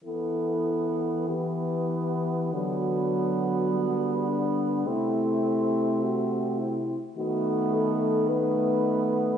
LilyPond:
<<
  \new Staff \with { instrumentName = "French horn" } { \time 4/4 \key e \minor \tempo 4 = 52 a'4 g'4 fis'4. d'8 | e'4 fis'8 e'8 fis'8 a'8 b'4 | }
  \new Staff \with { instrumentName = "French horn" } { \time 4/4 \key e \minor b4 b4 b2 | c'4.~ c'16 r16 b4 b4 | }
  \new Staff \with { instrumentName = "French horn" } { \clef bass \time 4/4 \key e \minor e4 e4 fis4 g4 | a4.~ a16 r16 a4 a4 | }
  \new Staff \with { instrumentName = "French horn" } { \clef bass \time 4/4 \key e \minor e2 d2 | c4.~ c16 r16 dis2 | }
>>